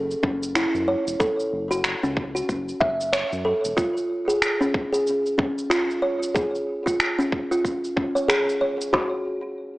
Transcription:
Already playing: analog synth bass F#1
0.11 cabasa
0.23 analog synth bass F#1, kalimba C#4, kick
0.43 cabasa
0.55 kalimba E4, finger snap, cabasa
0.74 analog synth bass F#2, cabasa
0.88 kalimba C#5
1.07 analog synth bass E1, cabasa
1.20 kalimba A4, kick, cabasa
1.40 cabasa
1.52 analog synth bass F#1
1.71 kalimba F#4, cabasa
1.84 finger snap, cabasa
2.03 analog synth bass C#2, kalimba C#4, cabasa
2.17 kick
2.35 kalimba F#4, cabasa
2.49 analog synth bass F#1, kick, cabasa
2.69 cabasa
2.80 analog synth bass F#1, kalimba E5, kick
3.01 cabasa
3.13 kalimba C#5, finger snap, cabasa
3.33 analog synth bass F#2, cabasa
3.45 kalimba A4
3.65 analog synth bass E1, cabasa
3.77 kalimba F4, kick, cabasa
3.97 cabasa
4.28 kalimba G#4, cabasa
4.42 finger snap, cabasa
4.61 kalimba C#4, cabasa
4.74 kick
4.93 kalimba G#4, cabasa
5.07 cabasa
5.26 cabasa
5.38 kalimba C#4, kick
5.58 cabasa
5.70 kalimba F4, finger snap, cabasa
5.91 cabasa
6.02 kalimba C#5
6.23 cabasa
6.35 kalimba G#4, kick, cabasa
6.55 cabasa
6.86 kalimba F4, kick, cabasa
7.00 finger snap, cabasa
7.19 kalimba C#4, cabasa
7.32 kick
7.51 kalimba F4, cabasa
7.65 kick, cabasa
7.84 cabasa
7.97 kalimba C#4, kick
8.15 kalimba C#5, cabasa
8.28 kalimba G#4, finger snap, cabasa
8.49 cabasa
8.61 kalimba C#5
8.81 cabasa
8.93 kalimba F#4, kick, snare

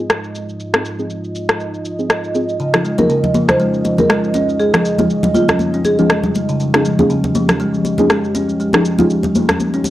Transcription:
Already playing: analog synth pad G#3 F4 D#5
0.00 synth stab C4 D#4 F4 G#4
0.10 cross-stick, shaker
0.24 shaker
0.35 shaker
0.49 shaker
0.60 shaker
0.74 synth stab C4 D#4 F4 G#4, cross-stick, shaker
0.85 shaker
0.99 synth stab C4 D#4 F4 G#4, shaker
1.10 shaker
1.24 shaker
1.35 shaker
1.49 cross-stick, shaker
1.60 shaker
1.74 shaker
1.85 shaker
1.99 synth stab C4 D#4 F4 G#4, shaker
2.10 cross-stick, shaker
2.24 shaker
2.35 synth stab C4 D#4 F4 G#4, shaker
2.49 shaker
2.60 kalimba C#3, analog synth pad F3 C#4, shaker
2.74 synth stab F3 C#4 D#4 F4 G#4, cross-stick, muted conga, shaker
2.85 kalimba G#3, shaker
2.98 synth stab F3 C#4 D#4 F4 G#4, marimba A#4, muted conga, high conga, low conga, shaker
3.10 kalimba C#3, marimba A#4, shaker
3.24 muted conga, low conga, shaker
3.34 kalimba F3, high conga, shaker
3.48 marimba C5, cross-stick, muted conga, low conga, shaker
3.60 kalimba G#3, shaker
3.74 shaker
3.85 kalimba F3, muted conga, shaker
3.98 synth stab F3 C#4 D#4 F4 G#4, marimba A#4, high conga, low conga, shaker
4.10 kalimba G#3, cross-stick, muted conga, shaker
4.24 shaker
4.34 kalimba C#4, muted conga, shaker
4.49 shaker
4.60 kalimba G#3, marimba G#4, shaker
4.74 kalimba F3, synth stab F3 C#4 D#4 F4 G#4, cross-stick, muted conga, shaker
4.85 shaker
4.99 synth stab F3 C#4 D#4 F4 G#4, kalimba G#3, muted conga, high conga, low conga, shaker
5.10 shaker
5.23 kalimba G3, muted conga, low conga, shaker
5.34 marimba F4, high conga, shaker
5.48 kalimba C#4, cross-stick, muted conga, low conga, shaker
5.59 high conga, shaker
5.74 kalimba C#4, shaker
5.85 marimba G#4, muted conga, shaker
5.99 synth stab F3 C#4 D#4 F4 G#4, kalimba G#3, shaker
6.10 cross-stick, muted conga, shaker
6.23 kalimba G3, low conga, shaker
6.35 muted conga, shaker
6.49 kalimba C#3, shaker
6.60 kalimba C#3, analog synth pad G4, shaker
6.74 synth stab F3 C#4 D#4 F4 G#4, cross-stick, muted conga, shaker
6.85 kalimba G#3, shaker
6.99 synth stab F3 C#4 D#4 F4 G#4, muted conga, high conga, low conga, shaker
7.10 kalimba C#3, shaker
7.24 muted conga, low conga, shaker
7.35 kalimba F3, high conga, shaker
7.49 cross-stick, muted conga, low conga, shaker
7.60 kalimba G#3, shaker
7.74 shaker
7.85 kalimba F3, muted conga, shaker
7.98 synth stab F3 C#4 D#4 F4 G#4, high conga, low conga, shaker
8.10 kalimba G#3, cross-stick, muted conga, shaker
8.24 shaker
8.35 kalimba C#4, muted conga, shaker
8.49 shaker
8.60 kalimba G#3, shaker
8.73 kalimba F3, synth stab F3 C#4 D#4 F4 G#4, cross-stick, muted conga, shaker
8.85 shaker
8.99 synth stab F3 C#4 D#4 F4 G#4, kalimba G#3, muted conga, high conga, low conga, shaker
9.10 shaker
9.23 kalimba G3, muted conga, low conga, shaker
9.35 high conga, shaker
9.49 kalimba C#4, cross-stick, muted conga, low conga, shaker
9.60 high conga, shaker
9.74 kalimba C#4, shaker
9.84 muted conga, high conga, shaker

